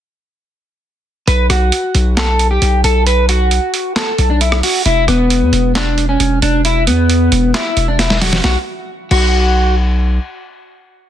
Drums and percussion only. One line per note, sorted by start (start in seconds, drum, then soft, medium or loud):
1.28 closed hi-hat medium
1.50 cross-stick medium
1.50 closed hi-hat medium
1.72 closed hi-hat medium
1.95 closed hi-hat medium
2.17 snare loud
2.17 clap medium
2.17 closed hi-hat medium
2.39 closed hi-hat medium
2.62 closed hi-hat medium
2.84 closed hi-hat medium
3.07 closed hi-hat medium
3.29 closed hi-hat medium
3.51 closed hi-hat medium
3.74 closed hi-hat medium
3.96 snare loud
3.96 clap medium
3.96 closed hi-hat medium
4.18 closed hi-hat medium
4.41 closed hi-hat medium
4.52 cross-stick loud
4.63 open hi-hat medium
4.86 closed hi-hat medium
5.08 cross-stick medium
5.08 closed hi-hat medium
5.30 closed hi-hat medium
5.53 closed hi-hat medium
5.75 snare loud
5.75 clap medium
5.75 closed hi-hat medium
5.98 closed hi-hat medium
6.20 closed hi-hat medium
6.42 closed hi-hat medium
6.65 closed hi-hat medium
6.87 closed hi-hat medium
7.10 closed hi-hat medium
7.32 closed hi-hat medium
7.54 snare loud
7.54 clap medium
7.54 closed hi-hat medium
7.77 closed hi-hat medium
7.99 snare medium
7.99 closed hi-hat medium
8.10 snare medium
8.21 snare loud
8.21 open hi-hat medium
8.33 snare loud
8.44 snare medium
9.11 crash medium